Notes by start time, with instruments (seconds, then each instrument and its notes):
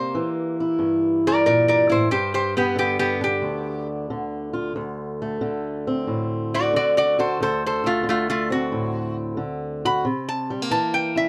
Already playing: steel-string acoustic guitar C3 A#3 G4, resonator guitar played with a steel bar C5
0.15 steel-string acoustic guitar E3
0.60 steel-string acoustic guitar E4
0.79 steel-string acoustic guitar G2
1.27 resonator guitar played with a steel bar A#4 D5
1.46 steel-string acoustic guitar A#2, resonator guitar played with a steel bar A#4 D5
1.68 resonator guitar played with a steel bar A#4 D5
1.90 steel-string acoustic guitar A2, resonator guitar played with a steel bar E4 C5
2.11 steel-string acoustic guitar G2, resonator guitar played with a steel bar G4 C5
2.34 resonator guitar played with a steel bar G4 C5
2.57 resonator guitar played with a steel bar B3 G4, steel-string acoustic guitar B3
2.75 steel-string acoustic guitar D3, resonator guitar played with a steel bar B3 G4
2.99 resonator guitar played with a steel bar B3 G4
3.21 steel-string acoustic guitar D4, resonator guitar played with a steel bar G4
3.42 steel-string acoustic guitar D2
4.10 steel-string acoustic guitar D3
4.53 steel-string acoustic guitar F4
4.76 steel-string acoustic guitar D2
5.22 steel-string acoustic guitar A3
5.41 steel-string acoustic guitar D3
5.87 steel-string acoustic guitar C4
6.07 steel-string acoustic guitar A2
6.54 resonator guitar played with a steel bar F#4 D5
6.73 steel-string acoustic guitar D3, resonator guitar played with a steel bar F#4 D5
6.97 resonator guitar played with a steel bar F#4 D5
7.19 steel-string acoustic guitar F#4, resonator guitar played with a steel bar A4 C5
7.40 steel-string acoustic guitar D2, resonator guitar played with a steel bar A4 C5
7.66 resonator guitar played with a steel bar A4 C5
7.84 steel-string acoustic guitar A3, resonator guitar played with a steel bar A3 F4
8.03 steel-string acoustic guitar D3
8.09 resonator guitar played with a steel bar A3 F4
8.30 resonator guitar played with a steel bar A3 F4
8.50 steel-string acoustic guitar C4, resonator guitar played with a steel bar F#4
8.72 steel-string acoustic guitar A2
9.37 steel-string acoustic guitar D3
9.85 steel-string acoustic guitar F#4, resonator guitar played with a steel bar B5
10.05 steel-string acoustic guitar C3
10.29 resonator guitar played with a steel bar A5
10.50 steel-string acoustic guitar G3
10.62 steel-string acoustic guitar A#3
10.71 steel-string acoustic guitar E3, resonator guitar played with a steel bar A5
10.94 resonator guitar played with a steel bar G5
11.16 steel-string acoustic guitar E4, resonator guitar played with a steel bar E5